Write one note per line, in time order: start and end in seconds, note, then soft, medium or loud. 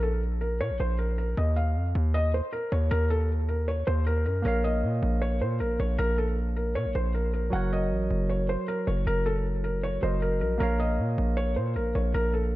0.00 0.62 A#1 loud
0.00 0.20 A4 medium
0.41 0.58 A#4 medium
0.61 0.72 A#2 loud
0.61 0.77 C#5 medium
0.70 0.79 A#1 loud
0.80 1.35 A#1 loud
0.80 0.97 C5 medium
0.99 1.16 A#4 medium
1.18 1.35 A#4 medium
1.37 1.77 D#2 loud
1.37 1.54 D#5 medium
1.56 2.11 F5 medium
1.76 1.94 F2 loud
1.95 2.41 D#2 loud
2.14 2.31 D#5 medium
2.34 2.51 C5 medium
2.53 2.69 A#4 medium
2.72 2.90 D#2 loud
2.72 2.89 C#5 medium
2.91 3.84 D#2 loud
2.91 3.08 A#4 loud
3.10 3.27 A4 medium
3.49 3.65 A#4 medium
3.68 3.85 C#5 medium
3.87 4.27 D#2 loud
3.87 4.04 C5 medium
4.07 4.23 A#4 medium
4.26 4.44 F#2 medium
4.26 4.43 A#4 medium
4.42 4.85 A#1 loud
4.42 7.47 A#3 medium
4.42 7.48 A#4 medium
4.42 4.62 A#4 medium
4.42 7.49 C#5 medium
4.48 7.50 F5 medium
4.64 5.18 D#5 medium
4.83 5.02 A#2 loud
5.03 5.43 A#1 loud
5.22 5.39 C#5 medium
5.41 5.62 A#2 loud
5.41 5.58 C5 medium
5.60 5.79 A#1 loud
5.60 5.77 A#4 medium
5.80 5.98 A#1 loud
5.80 5.97 C#5 medium
5.99 6.77 A#1 loud
5.99 6.15 A#4 loud
6.18 6.35 A4 medium
6.56 6.73 A#4 medium
6.75 6.87 A#2 loud
6.75 6.92 C#5 medium
6.85 6.95 A#1 loud
6.95 7.50 A#1 loud
6.95 7.12 C5 medium
7.14 7.31 A#4 medium
7.33 7.50 A#4 medium
7.50 7.93 F#1 loud
7.50 9.97 F#3 medium
7.50 9.98 F#4 medium
7.50 9.99 A#4 medium
7.50 7.70 F#5 medium
7.55 10.00 C#5 medium
7.73 8.27 D#5 medium
7.91 8.09 A1 loud
8.10 8.57 F#1 loud
8.29 8.46 C#5 medium
8.49 8.66 C5 medium
8.68 8.85 A#4 medium
8.87 9.06 F#1 loud
8.87 9.04 C#5 medium
9.07 9.99 F#1 loud
9.07 9.24 A#4 loud
9.26 9.43 A4 medium
9.64 9.81 A#4 medium
9.83 10.00 C#5 medium
10.01 10.43 F#1 loud
10.01 10.60 F#3 soft
10.01 10.60 F#4 soft
10.01 10.58 A#4 soft
10.01 10.20 C5 medium
10.01 10.61 D#5 medium
10.22 10.39 A#4 medium
10.41 10.59 A#1 medium
10.41 10.58 A#4 medium
10.58 11.00 A#1 loud
10.58 12.56 A#3 medium
10.58 12.56 A#4 medium
10.58 10.77 A#4 loud
10.58 12.56 C#5 medium
10.63 12.56 F5 medium
10.80 11.34 D#5 medium
10.99 11.17 A#2 loud
11.18 11.58 A#1 loud
11.37 11.54 C#5 loud
11.56 11.77 A#2 loud
11.56 11.73 C5 medium
11.76 11.94 A#1 loud
11.76 11.93 A#4 medium
11.95 12.14 A#1 loud
11.95 12.12 C#5 medium
12.14 12.56 A#1 loud
12.14 12.31 A#4 loud
12.34 12.50 A4 medium